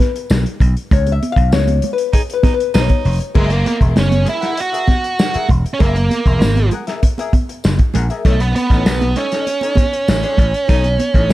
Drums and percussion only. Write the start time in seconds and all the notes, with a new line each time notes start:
0.00 snare, closed hi-hat, high conga
0.16 closed hi-hat
0.30 snare, tambourine, muted conga
0.46 closed hi-hat
0.60 kick, closed hi-hat
0.77 closed hi-hat
0.91 kick, closed hi-hat, muted conga, low conga
1.07 closed hi-hat, muted conga
1.23 closed hi-hat, high conga
1.36 kick, closed hi-hat
1.52 snare, tambourine, high conga
1.68 closed hi-hat, muted conga, high conga
1.82 closed hi-hat, low conga
1.98 closed hi-hat
2.13 kick, closed hi-hat
2.30 closed hi-hat
2.43 kick, snare, closed hi-hat, high conga
2.60 closed hi-hat
2.74 snare, tambourine, muted conga
2.89 kick, closed hi-hat, muted conga, high conga
3.05 open hi-hat
3.20 closed hi-hat
3.35 kick, crash, muted conga, low conga
3.50 closed hi-hat, muted conga
3.66 closed hi-hat, high conga
3.81 kick, closed hi-hat
3.96 snare, tambourine, muted conga, high conga
4.12 closed hi-hat, muted conga, high conga
4.26 closed hi-hat, low conga
4.42 snare, closed hi-hat
4.57 closed hi-hat
4.74 closed hi-hat
4.88 kick, snare, closed hi-hat, high conga
5.04 closed hi-hat
5.19 snare, tambourine
5.34 closed hi-hat
5.49 kick, closed hi-hat, low conga
5.66 closed hi-hat
5.80 kick, closed hi-hat, low conga
5.96 closed hi-hat, muted conga
6.11 closed hi-hat, high conga
6.26 kick, closed hi-hat
6.41 snare, tambourine, muted conga, high conga
6.56 closed hi-hat, high conga
6.71 closed hi-hat, low conga
6.87 snare, closed hi-hat
7.03 kick, closed hi-hat, muted conga
7.18 closed hi-hat, muted conga
7.33 kick, closed hi-hat, high conga
7.49 closed hi-hat
7.64 snare, tambourine
7.79 kick, closed hi-hat, muted conga
7.94 closed hi-hat, low conga
8.10 closed hi-hat
8.25 kick, closed hi-hat, muted conga, low conga
8.40 closed hi-hat
8.56 closed hi-hat, high conga
8.70 kick, closed hi-hat
8.86 snare, tambourine, high conga
9.01 closed hi-hat, muted conga, high conga
9.16 closed hi-hat, low conga
9.32 snare, closed hi-hat
9.47 closed hi-hat, muted conga
9.61 closed hi-hat, muted conga
9.75 kick, snare, closed hi-hat, high conga
9.93 closed hi-hat
10.08 snare, tambourine
10.23 closed hi-hat
10.37 kick, closed hi-hat, low conga
10.54 closed hi-hat
10.69 kick, closed hi-hat, low conga
10.84 closed hi-hat, muted conga
10.99 closed hi-hat, high conga
11.14 kick, closed hi-hat
11.30 high conga